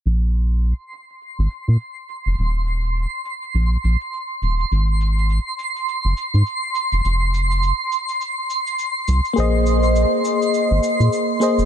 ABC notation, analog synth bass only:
X:1
M:4/4
L:1/16
Q:"Swing 16ths" 1/4=103
K:Fdor
V:1 name="Analog synth bass" clef=bass
B,,,4- B,,, z4 A,,, z B,, z3 F,,, | E,,,4- E,,, z3 B,,, z B,,, z3 E,,, z | A,,,4- A,,, z4 _G,,, z A,, z3 F,,, | F,,,4- F,,, z8 z C,, z |
B,,,4- B,,, z4 A,,, z B,, z3 F,,, |]